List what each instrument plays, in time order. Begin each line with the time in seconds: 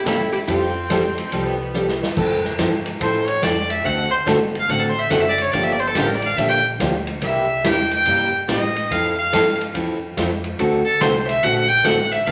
Already playing: upright bass G1
0.05 steel-string acoustic guitar C3 G3 A#3 E4 G4, fiddle E4, hollow-body jazz guitar A4, kick, snare, hi-hat pedal, ride
0.32 fiddle E4, hollow-body jazz guitar G4, ride
0.47 upright bass F2, steel-string acoustic guitar F3 G3 C4 G4 A4, fiddle C4, hollow-body jazz guitar F4, kick, ride
0.90 steel-string acoustic guitar F3 G3 C4 G4 A4, kick, snare, hi-hat pedal, ride
1.18 ride
1.32 upright bass C2, steel-string acoustic guitar F3 G3 C4 G4 A4, kick, ride
1.44 fiddle B3, hollow-body jazz guitar E4
1.74 steel-string acoustic guitar F3 G3 C4 G4 A4, hi-hat pedal
1.88 snare
2.03 snare
2.16 upright bass F2, steel-string acoustic guitar F3 C4 E4 A4, kick, crash
2.44 snare
2.58 upright bass G2, steel-string acoustic guitar F3 C4 E4 A4, kick, snare, hi-hat pedal, ride
2.86 ride
3.00 upright bass A2, steel-string acoustic guitar F3 C4 E4 A4, fiddle C5, kick, ride
3.27 fiddle C#5, ride
3.42 upright bass F2, steel-string acoustic guitar F3 C4 E4 A4, fiddle D5, kick, snare, hi-hat pedal, ride
3.70 fiddle E5, ride
3.84 upright bass D2, steel-string acoustic guitar D3 A3 C4 F#4 A4, fiddle F#5, kick, ride
4.11 fiddle C5
4.26 upright bass G1, steel-string acoustic guitar D3 A3 C4 F#4 A4, kick, snare, hi-hat pedal, ride
4.55 ride
4.60 fiddle F5
4.69 upright bass A1, steel-string acoustic guitar D3 A3 C4 F#4 A4, fiddle F#5, kick, ride
4.80 fiddle A4
4.89 fiddle C5
4.99 fiddle E5
5.10 upright bass F#1, steel-string acoustic guitar D3 A3 C4 F#4 A4, fiddle F#5, kick, snare, hi-hat pedal, ride
5.21 fiddle E5
5.29 fiddle D5
5.38 fiddle C#5, ride
5.51 upright bass G1, steel-string acoustic guitar D3 F3 A#3 D4 G4, fiddle D5, kick, ride
5.63 fiddle E5
5.73 fiddle D5
5.80 fiddle C5
5.87 fiddle A4
5.95 upright bass A1, steel-string acoustic guitar D3 F3 A#3 D4 G4, fiddle G4, kick, snare, hi-hat pedal, ride
6.06 fiddle A#4
6.15 fiddle D5
6.22 ride
6.26 fiddle F5
6.37 upright bass A#1, steel-string acoustic guitar D3 F3 A#3 D4 G4, fiddle E5, kick, ride
6.48 fiddle G5
6.80 upright bass D2, steel-string acoustic guitar D3 F3 A#3 D4 G4, kick, snare, hi-hat pedal, ride
7.07 ride
7.22 upright bass C2, steel-string acoustic guitar C3 G3 A#3 E4 G4, fiddle E5, kick, ride
7.64 upright bass E2, steel-string acoustic guitar C3 G3 A#3 E4 G4, fiddle G5, kick, snare, hi-hat pedal, ride
7.91 fiddle G5, ride
8.06 upright bass G2, steel-string acoustic guitar C3 G3 A#3 E4 G4, kick, ride
8.48 upright bass A2, steel-string acoustic guitar C3 G3 A#3 E4 G4, fiddle D#5, kick, snare, hi-hat pedal, ride
8.76 ride
8.91 upright bass F2, steel-string acoustic guitar F3 C4 E4 A4, fiddle F5, kick, ride
9.17 fiddle F5
9.33 upright bass G2, steel-string acoustic guitar F3 C4 E4 A4, kick, snare, hi-hat pedal, ride
9.61 ride
9.74 upright bass E2, steel-string acoustic guitar F3 C4 E4 A4, kick, ride
10.17 upright bass F2, steel-string acoustic guitar F3 C4 E4 A4, kick, snare, hi-hat pedal, ride
10.44 ride
10.59 upright bass D2, steel-string acoustic guitar D3 A3 C4 F#4 A4, kick, ride
10.85 fiddle A4
11.00 upright bass C2, steel-string acoustic guitar D3 A3 C4 F#4 A4, fiddle C5, kick, snare, hi-hat pedal, ride
11.27 fiddle E5, ride
11.43 upright bass A#1, steel-string acoustic guitar D3 A3 C4 F#4 A4, fiddle F#5, kick, ride
11.68 fiddle G5
11.84 upright bass A1, steel-string acoustic guitar D3 A3 C4 F#4 A4, fiddle F#5, kick, snare, hi-hat pedal, ride
12.12 fiddle E5, ride
12.27 upright bass G1, steel-string acoustic guitar D3 F3 B3 D4 G4, fiddle F5, kick, ride